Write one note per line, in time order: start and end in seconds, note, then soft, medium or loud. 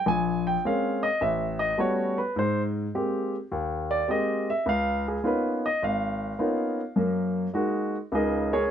0.06 0.56 A#1 medium
0.06 0.44 G#5 medium
0.47 0.63 G5 medium
0.65 1.05 G#3 soft
0.65 1.05 A#3 soft
0.65 1.05 C4 soft
0.65 1.05 C#4 medium
0.65 1.02 F5 medium
1.03 1.20 D#5 medium
1.21 1.71 A1 medium
1.21 1.59 E5 medium
1.59 1.77 D#5 medium
1.78 2.18 G3 soft
1.78 2.19 A3 soft
1.78 2.19 B3 soft
1.78 2.19 C#4 soft
1.78 2.19 F#4 medium
1.78 2.17 C#5 medium
2.18 2.35 B4 medium
2.36 2.85 G#2 medium
2.36 2.61 C5 medium
2.95 3.35 G#3 soft
2.95 3.35 A#3 soft
2.95 3.35 C4 soft
2.95 3.35 G4 medium
3.52 4.01 D#2 medium
3.91 4.08 D5 medium
4.08 4.49 G#3 medium
4.08 4.49 A#3 soft
4.08 4.49 C4 soft
4.08 4.49 G4 medium
4.08 4.47 D#5 medium
4.50 4.66 E5 medium
4.66 5.16 C#2 medium
4.66 5.05 F5 medium
5.08 5.24 G#4 medium
5.24 5.64 A#3 soft
5.24 5.64 B3 soft
5.24 5.64 C#4 soft
5.24 5.65 D#4 soft
5.24 5.65 F4 medium
5.24 5.63 B4 medium
5.66 5.82 D#5 medium
5.82 6.32 G#1 medium
5.82 7.51 F5 medium
6.39 6.79 A#3 medium
6.39 6.80 B3 soft
6.39 6.80 C#4 soft
6.39 6.80 D#4 medium
6.39 6.80 F4 medium
6.96 7.46 F#2 medium
6.96 7.46 A#3 medium
7.53 7.95 G#3 medium
7.53 7.95 A#3 soft
7.53 7.95 D#4 soft
7.53 7.95 F#4 medium
8.12 8.62 C#2 medium
8.12 8.62 C#3 medium
8.12 8.51 D#4 medium
8.12 8.51 G#4 medium
8.12 8.51 A#4 medium
8.12 8.51 D#5 medium
8.53 8.71 C#4 medium
8.53 8.71 G#4 medium
8.53 8.71 A#4 medium
8.53 8.71 C#5 medium